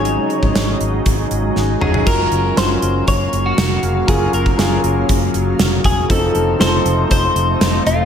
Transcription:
<<
  \new Staff \with { instrumentName = "Clean electric guitar" } { \time 4/4 \key ges \lydian \tempo 4 = 119 des''2. r8 aes'8 | bes'4 c''4 des''8. ges'4~ ges'16 | aes'8 bes'4 r2 aes'8 | a'4 c''4 c''4. f'8 | }
  \new Staff \with { instrumentName = "Grand piano" } { \time 4/4 \key ges \lydian <ges des' ees' aes'>4. r2 <ges des' ees' aes'>8 | <ges des' f' bes'>4 <ges des' f' bes'>2 r4 | <ges des' f' bes'>4 <ges des' f' aes'>2 r4 | <f c' ees' a'>4 <f c' ees' a'>2 r4 | }
  \new Staff \with { instrumentName = "Ambient pad" } { \clef bass \time 4/4 \key ges \lydian <des ges aes ees'>1 | <des ges bes f''>1~ | <des ges bes f''>1 | <c f a ees'>1 | }
  \new Staff \with { instrumentName = "Fingered electric bass" } { \clef bass \time 4/4 \key ges \lydian aes,,8 r16 aes,,16 aes,,8 aes,,8 aes,,8 aes,,8 aes,,8 f,,8 | ges,,8 ges,,8 ges,,8 ges,,8 ges,,8 ges,,8 f,,8 f,,8 | ges,,8 ges,,8 ges,,8 ges,,8 ges,,8 ges,,8 f,,8 e,,8 | f,,8 f,,8 f,,8 f,,8 f,,8 f,,8 f,,8 e,,8 | }
  \new DrumStaff \with { instrumentName = "Drums" } \drummode { \time 4/4 hh8 hh16 bd16 <hh sn>8 hh8 <hh bd>8 hh8 sn8 toml16 tomfh16 | <cymc bd>8 hh8 <hh sn>8 hh8 <hh bd>8 hh8 <hh sn>8 hh8 | <hh bd>8 hh16 bd16 <hh sn>8 hh8 <hh bd>8 hh8 <hh sn>8 <hh bd>8 | <hh bd>8 hh8 <hh sn>8 hh8 <hh bd>8 hh8 <hh sn>8 hh8 | }
>>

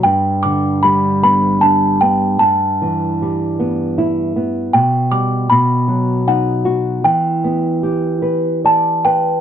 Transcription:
<<
  \new Staff \with { instrumentName = "Music box" } { \time 3/4 \key e \minor \tempo 4 = 76 g''8 d'''8 b''8 b''8 a''8 g''8 | a''2 r4 | g''8 d'''8 b''4 fis''4 | g''2 a''8 g''8 | }
  \new Staff \with { instrumentName = "Nylon-string guitar" } { \time 3/4 \key e \minor g,8 d8 g8 b8 d'8 b8 | g,8 e8 g8 b8 e'8 b8 | b,8 g8 b,8 fis8 dis'8 fis'8 | e8 b8 g'8 b'8 d''8 b'8 | }
>>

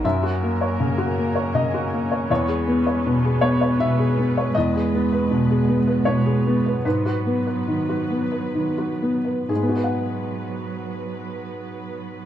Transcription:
<<
  \new Staff \with { instrumentName = "Felt piano" } { \time 3/4 \key gis \minor \tempo 4 = 78 << { e''2 dis''4 | cis''4 r8 cis''8 e''4 | dis''2 cis''4 | b'4 r2 |
<gis, gis b fis' gis' b' fis''>2. | } \\ { fis,16 fis'16 ais16 cis''16 cis16 fis'16 ais16 cis''16 cis16 fis'16 ais16 cis''16 | e,16 gis'16 b16 cis''16 b,16 gis'16 b16 cis''16 b,16 gis'16 b16 cis''16 | e,16 gis'16 b16 b'16 b,16 gis'16 b16 b'16 b,16 gis'16 b16 b'16 | gis,16 fis'16 b16 b'16 dis16 fis'16 b16 b'16 dis16 fis'16 b16 b'16 |
r2. | } >> }
  \new Staff \with { instrumentName = "String section" } { \time 3/4 \key gis \minor << { <fis ais'>2. | <gis b'>2.~ | <gis b'>2. | <fis b'>2. |
<fis b'>2. | } \\ { cis'2.~ | cis'2. | b2.~ | b2. |
b2. | } >> }
  \new Staff \with { instrumentName = "Cello" } { \clef bass \time 3/4 \key gis \minor ais2. | b2. | gis2. | fis2~ fis8. r16 |
fis2. | }
>>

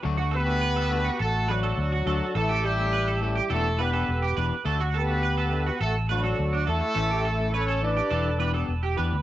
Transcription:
<<
  \new Staff \with { instrumentName = "Clean electric guitar" } { \time 4/4 \key d \major \tempo 4 = 104 r16 fis'16 a'8 b'16 a'8 fis'16 a'8 b'16 a'8 fis'16 a'8 | a'16 g'16 a'8 b'16 a'8 g'16 a'8 b'16 a'8 g'16 b'8 | a'16 fis'16 a'8 b'16 a'8 fis'16 a'8 b'16 a'8 d'16 a'8 | a'16 g'16 a'8 b'16 a'8 g'16 a'8 b'16 a'8 g'16 b'8 | }
  \new Staff \with { instrumentName = "Horn section" } { \time 4/4 \key d \major r8 <b g' b'>4. <a fis' a'>8 <fis d' fis'>4. | <a e' a'>8 <g e' g'>4 <g e' g'>8 <a e' a'>8 <b g' b'>4 r8 | r8 <b g' b'>4. <a fis' a'>8 <fis d' fis'>4 <a e' a'>8~ | <a e' a'>4 <cis' a' cis''>8 <d' b' d''>4. r4 | }
  \new Staff \with { instrumentName = "Clean electric guitar" } { \time 4/4 \key d \major <fis a d' fis'>16 <a d' fis'>16 r16 <a d' fis'>16 r8 <a d' fis'>16 r8. <fis a d' fis'>16 <a d' fis'>16 r8 <fis a d' fis'>16 r16 | <e a'>16 <a cis' a'>16 r16 <a cis' a'>16 r8 <e a cis' a'>16 r16 <e b d' g'>16 r16 <e b d' g'>16 <b d' g'>16 r8 <e b d' g'>16 r16 | <a d' fis'>16 <d' fis'>16 r16 <d' fis'>16 r8 <a d'>16 r8. <a d' fis'>16 <d' fis'>16 r8 <a d' fis'>16 r16 | <e a cis' a'>16 <a cis' a'>16 r16 <a cis' a'>16 r8 <e a cis' a'>16 r16 <e d' g'>16 r16 <e b d' g'>16 <b d' g'>16 r8 <e b d' g'>16 r16 | }
  \new Staff \with { instrumentName = "Fingered electric bass" } { \clef bass \time 4/4 \key d \major d,2 a,,4 d,8 d,16 r16 | a,,2 e,,4 e,,8 e,,16 r16 | d,2 a,,4 d,8 e,16 r16 | a,,2 e,,4 e,,8 e,16 d,16 | }
>>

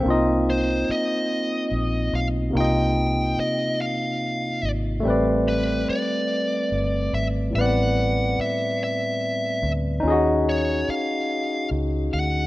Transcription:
<<
  \new Staff \with { instrumentName = "Lead electric guitar" } { \time 6/8 \key a \dorian \tempo 4. = 48 r8 c''8 ees''4. f''8 | g''4 ees''8 f''4 r8 | r8 b'8 d''4. e''8 | fis''4 e''8 e''4 r8 |
r8 cis''8 eis''4 r8 fis''8 | }
  \new Staff \with { instrumentName = "Tine electric piano" } { \time 6/8 \key a \dorian <bes c' d' ees' f' ees''>2. | <c bes ees' f' ees''>2. | <g a c' b' d''>2. | <a, g b c' b' d''>2. |
<cis' dis' eis' fis' gis' dis''>2. | }
  \new Staff \with { instrumentName = "Fingered electric bass" } { \clef bass \time 6/8 \key a \dorian c,4 r4 bes,,8 b,,8 | c,4 r4. gis,,8 | a,,4 r4 g,,8 gis,,8 | a,,4 r4. d,8 |
dis,4 r4 cis,8 d,8 | }
>>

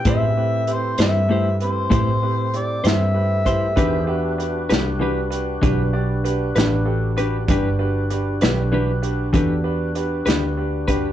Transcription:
<<
  \new Staff \with { instrumentName = "Harmonica" } { \time 12/8 \key e \minor \tempo 4. = 65 e''4 c''8 e''4 c''4. d''8 e''4.~ | e''4. r1 r8 | r1. | }
  \new Staff \with { instrumentName = "Clean electric guitar" } { \time 12/8 \key e \minor <a e' g' c''>8 r4 <e' g' c''>8 <a e' g' c''>8 r8 <a e' g' c''>8 r4 <e' g' c''>8 r8 <e' g' c''>8 | <e d' g' b'>8 r4 <d' g' b'>8 <e d' g' b'>8 r8 <e d' g' b'>8 r4 <d' g' b'>8 r8 <d' g' b'>8 | <e d' g' b'>8 r4 <d' g' b'>8 <e d' g' b'>8 r8 <e d' g' b'>8 r4 <d' g' b'>8 r8 <d' g' b'>8 | }
  \new Staff \with { instrumentName = "Grand piano" } { \time 12/8 \key e \minor <c' e' g' b'>8 <c' e' g' b'>8 <c' e' g' b'>8 <c' e' g' b'>8 <c' e' g' b'>8 <c' e' g' b'>8 <c' e' g' b'>8 <c' e' g' b'>8 <c' e' g' c''>8 <c' e' g' b'>8 <c' e' g' b'>8 <c' e' g' b'>8 | <d' fis' g' b'>8 <d' fis' g' b'>8 <d' fis' g' b'>8 <d' fis' g' b'>8 <d' fis' g' b'>8 <d' fis' g' b'>8 <d' fis' g' b'>8 <d' fis' g' d''>8 <d' fis' g' b'>8 <d' fis' g' b'>8 <d' fis' g' a'>8 <d' fis' g' b'>8 | <d' fis' g' b'>8 <d' fis' g' b'>8 <d' fis' g' b'>8 <d' fis' g' b'>8 <d' fis' g' b'>8 <d' fis' g' b'>8 <d' fis' g' a'>8 <d' fis' g' b'>8 <d' fis' g' b'>8 <d' fis' g' b'>8 <d' fis' g' b'>8 <d' fis' g' b'>8 | }
  \new Staff \with { instrumentName = "Tonewheel organ" } { \time 12/8 \key e \minor <c' cis' f' gis'>8 <a c' e' g'>1~ <a c' e' g'>4. | <dis g' gis' c''>8 <d' fis' g' b'>1~ <d' fis' g' b'>4. | <d' fis' g' b'>1. | }
  \new Staff \with { instrumentName = "Fingered electric bass" } { \clef bass \time 12/8 \key e \minor a,4. g,4. a,4. g,4. | e,4. c,4. b,,4. a,,4. | g,,4. b,,4. e,4. d,4. | }
  \new DrumStaff \with { instrumentName = "Drums" } \drummode { \time 12/8 <hh bd>4 hh8 <hh sn>4 hh8 <hh bd>4 hh8 <hh sn>4 <hh bd>8 | <hh bd>4 hh8 <hh sn>4 hh8 <hh bd>4 hh8 <hh sn>4 hh8 | <hh bd>4 hh8 <hh sn>4 hh8 <hh bd>4 hh8 <hh sn>4 <hh bd>8 | }
>>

